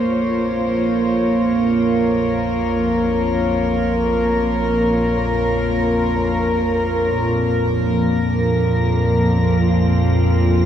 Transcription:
Already playing: synth drone A#1 F2, cello section A#3 F4 C5 C#5, ambient pad A#4
1.80 cello section A#4
7.19 cello section A#2, ambient pad A#4
7.90 cello section F3
9.39 cello section C4
9.68 cello section F4

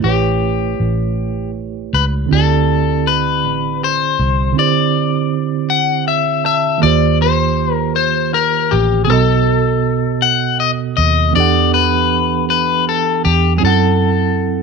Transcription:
0.00 tine electric piano A3 E4 G4
0.04 fingered electric bass A1, clean electric guitar G4, tine electric piano B4
0.08 tine electric piano C#5
0.80 fingered electric bass A1
1.93 fingered electric bass C#2, clean electric guitar B4
2.26 tine electric piano D3 C4
2.31 fingered electric bass D2, tine electric piano E4 F#4 D5, clean electric guitar A4
2.39 tine electric piano G4
3.07 clean electric guitar B4
3.44 fingered electric bass A1
3.84 clean electric guitar C5
4.19 fingered electric bass C2
4.52 tine electric piano D3 C4
4.57 tine electric piano E4 G4 C5, clean electric guitar D5
5.70 clean electric guitar F#5
6.07 tine electric piano E5, clean electric guitar E5
6.45 clean electric guitar E5, tine electric piano A5
6.78 tine electric piano D#3 A#3
6.82 fingered electric bass D#2, tine electric piano F4 G4, clean electric guitar D5
6.87 tine electric piano C5
7.22 clean electric guitar C5
7.74 clean electric guitar A#4
7.96 clean electric guitar C5
8.34 clean electric guitar A#4
8.71 fingered electric bass A1, clean electric guitar G4
9.05 tine electric piano B2 B3, clean electric guitar G#4
9.09 fingered electric bass B1, tine electric piano F#4 A4, clean electric guitar A4
9.13 tine electric piano D#5
10.22 clean electric guitar F#5
10.60 fingered electric bass D#2, clean electric guitar D#5
10.97 fingered electric bass D#2, clean electric guitar D#5
11.32 tine electric piano E3 B3 D4, clean electric guitar D5
11.36 fingered electric bass E2, tine electric piano G4 A4 F#5
11.74 clean electric guitar B4
12.50 clean electric guitar B4
12.89 clean electric guitar A4
13.25 fingered electric bass E2, clean electric guitar G4
13.57 tine electric piano F#3 C4, clean electric guitar G#4
13.62 fingered electric bass F#2, tine electric piano E4 A4, clean electric guitar A4
13.66 tine electric piano F#5

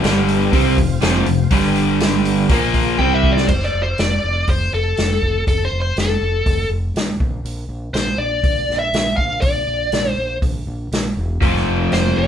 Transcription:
0.02 fingered electric bass G1, overdriven electric guitar G2 D3 G3, tonewheel organ D4 G4 D5 G5, snare, open hi-hat
0.28 open hi-hat
0.52 fingered electric bass C2, overdriven electric guitar C3 G3 C4, tonewheel organ C4 F4 C5 F5, kick, open hi-hat
0.77 fingered electric bass F1, overdriven electric guitar F2 C3, kick, open hi-hat
1.02 fingered electric bass F1, overdriven electric guitar F2 C3 F3, snare, open hi-hat
1.26 fingered electric bass F1, overdriven electric guitar F2 C3, open hi-hat
1.50 fingered electric bass G1, overdriven electric guitar G2 D3 G3, tonewheel organ D4 G4 D5 G5, kick, open hi-hat
1.75 open hi-hat
2.00 snare, open hi-hat
2.25 open hi-hat
2.49 fingered electric bass A#1, overdriven electric guitar A#2 F3 A#3, tonewheel organ A#3 F4 A#4 F5, kick, open hi-hat
2.74 kick, open hi-hat
2.99 fingered electric bass C2, overdriven electric guitar C3 G3 C4, tonewheel organ C4 G4 C5 G5, lead electric guitar G5, kick
3.15 lead electric guitar E5
3.24 kick
3.32 lead electric guitar D5
3.37 snare
3.48 fingered electric bass F1, lead electric guitar C5, kick, crash
3.62 lead electric guitar D5, snare
3.73 fingered electric bass F1
3.83 lead electric guitar C5
3.98 fingered electric bass F1, lead electric guitar D5, snare, open hi-hat
4.23 fingered electric bass F1
4.47 fingered electric bass F1, lead electric guitar C5, kick, open hi-hat
4.73 fingered electric bass F1, lead electric guitar A4
4.97 fingered electric bass F1, snare, open hi-hat
5.22 fingered electric bass F1, kick
5.47 fingered electric bass F1, lead electric guitar A4, kick, open hi-hat
5.65 lead electric guitar C5
5.71 fingered electric bass F1
5.82 lead electric guitar C5
5.96 fingered electric bass F1, lead electric guitar A4, snare, open hi-hat
6.21 fingered electric bass F1
6.46 fingered electric bass F1, kick, open hi-hat
6.70 fingered electric bass F1
6.94 fingered electric bass A1, snare, open hi-hat
7.20 fingered electric bass A#1, kick
7.44 fingered electric bass A#1, open hi-hat
7.69 fingered electric bass A#1
7.93 fingered electric bass A#1, lead electric guitar C5, snare, open hi-hat
8.18 fingered electric bass A#1, lead electric guitar D5
8.44 fingered electric bass A#1, kick, open hi-hat
8.69 fingered electric bass A#1, snare
8.79 lead electric guitar E5
8.93 fingered electric bass A#1, snare, open hi-hat
9.17 fingered electric bass A#1, lead electric guitar F5, kick
9.41 fingered electric bass A#1, lead electric guitar D5, kick, open hi-hat
9.67 fingered electric bass A#1
9.92 fingered electric bass A#1, snare, open hi-hat
10.09 lead electric guitar C5
10.17 fingered electric bass A#1
10.42 fingered electric bass A#1, kick, open hi-hat
10.67 fingered electric bass A#1
10.92 fingered electric bass A#1, snare, open hi-hat
11.17 fingered electric bass E1
11.41 fingered electric bass F1, overdriven electric guitar F2 C3 A3 C4 F4, kick, open hi-hat
11.45 overdriven electric guitar F3
11.56 snare
11.67 fingered electric bass F1
11.92 fingered electric bass F1, lead electric guitar C5, snare, open hi-hat
12.17 fingered electric bass F1, lead electric guitar D5

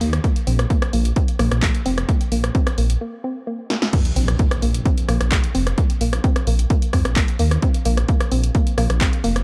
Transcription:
0.01 detuned saw bass D#2, synth arpeggio sound A#3, open hi-hat
0.13 cross-stick, closed hi-hat
0.24 synth arpeggio sound A#3, kick, closed hi-hat
0.36 closed hi-hat
0.47 detuned saw bass A#1, synth arpeggio sound C4, open hi-hat
0.59 cross-stick, closed hi-hat
0.70 synth arpeggio sound A#3, kick, closed hi-hat
0.82 cross-stick, closed hi-hat
0.93 detuned saw bass A#1, synth arpeggio sound A#3, open hi-hat
1.05 closed hi-hat
1.16 synth arpeggio sound C4, kick, closed hi-hat
1.28 closed hi-hat
1.39 detuned saw bass A#1, synth arpeggio sound A#3, cross-stick, open hi-hat
1.51 detuned saw bass A#1, cross-stick, closed hi-hat
1.62 synth arpeggio sound A#3, kick, clap, closed hi-hat
1.75 closed hi-hat
1.85 detuned saw bass F1, synth arpeggio sound C4, open hi-hat
1.98 cross-stick, closed hi-hat
2.09 synth arpeggio sound A#3, kick, closed hi-hat
2.21 closed hi-hat
2.32 detuned saw bass A#1, synth arpeggio sound A#3, open hi-hat
2.44 cross-stick, closed hi-hat
2.55 synth arpeggio sound C4, kick, closed hi-hat
2.67 cross-stick, closed hi-hat
2.78 detuned saw bass A#1, synth arpeggio sound A#3, open hi-hat
2.90 closed hi-hat
3.01 synth arpeggio sound A#3
3.24 synth arpeggio sound C4
3.47 synth arpeggio sound A#3
3.70 synth arpeggio sound A#3, snare
3.82 snare
3.93 synth arpeggio sound A#3, kick, closed hi-hat, crash, impact
4.05 closed hi-hat
4.16 detuned saw bass A#1, synth arpeggio sound C4, open hi-hat
4.28 cross-stick, closed hi-hat
4.39 synth arpeggio sound A#3, kick, closed hi-hat
4.51 cross-stick, closed hi-hat
4.62 detuned saw bass A#1, synth arpeggio sound A#3, open hi-hat
4.74 closed hi-hat
4.85 synth arpeggio sound C4, kick, closed hi-hat
4.98 closed hi-hat
5.09 detuned saw bass A#1, synth arpeggio sound A#3, cross-stick, open hi-hat
5.21 detuned saw bass A#1, cross-stick, closed hi-hat
5.32 synth arpeggio sound A#3, kick, clap, closed hi-hat
5.44 closed hi-hat
5.55 detuned saw bass F1, synth arpeggio sound C4, open hi-hat
5.67 cross-stick, closed hi-hat
5.78 synth arpeggio sound A#3, kick, closed hi-hat
5.90 closed hi-hat
6.01 detuned saw bass A#1, synth arpeggio sound A#3, open hi-hat
6.13 cross-stick, closed hi-hat
6.24 synth arpeggio sound C4, kick, closed hi-hat
6.36 cross-stick, closed hi-hat
6.47 detuned saw bass A#1, synth arpeggio sound A#3, open hi-hat
6.59 closed hi-hat
6.70 synth arpeggio sound A#3, kick, closed hi-hat
6.82 closed hi-hat
6.93 detuned saw bass F2, synth arpeggio sound C4, kick, cross-stick, open hi-hat
7.05 detuned saw bass A#1, cross-stick, closed hi-hat
7.16 synth arpeggio sound A#3, kick, clap, closed hi-hat
7.28 closed hi-hat
7.39 detuned saw bass D#2, synth arpeggio sound A#3, open hi-hat
7.51 cross-stick, closed hi-hat
7.62 synth arpeggio sound C4, kick, closed hi-hat
7.74 closed hi-hat
7.85 detuned saw bass A#1, synth arpeggio sound A#3, open hi-hat
7.97 cross-stick, closed hi-hat
8.08 synth arpeggio sound A#3, kick, closed hi-hat
8.21 cross-stick, closed hi-hat
8.32 detuned saw bass A#1, synth arpeggio sound C4, open hi-hat
8.44 closed hi-hat
8.55 synth arpeggio sound A#3, kick, closed hi-hat
8.67 closed hi-hat
8.78 detuned saw bass A#1, synth arpeggio sound A#3, cross-stick, open hi-hat
8.90 detuned saw bass A#1, cross-stick, closed hi-hat
9.01 synth arpeggio sound C4, kick, clap, closed hi-hat
9.13 closed hi-hat
9.24 detuned saw bass F1, synth arpeggio sound A#3, open hi-hat
9.36 cross-stick, closed hi-hat

